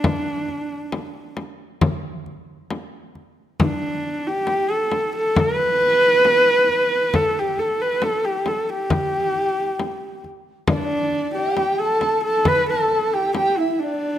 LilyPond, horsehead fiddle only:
\new Staff \with { instrumentName = "Horsehead fiddle" } { \time 4/4 \tempo 4 = 68 d'4. r2 r8 | d'8. g'8 a'8 a'16 b'2 | a'16 g'16 a'16 b'16 a'16 g'16 a'16 g'4.~ g'16 r8 | d'8. g'8 a'8 a'16 b'16 a'8 g'16 g'16 e'16 d'8 | }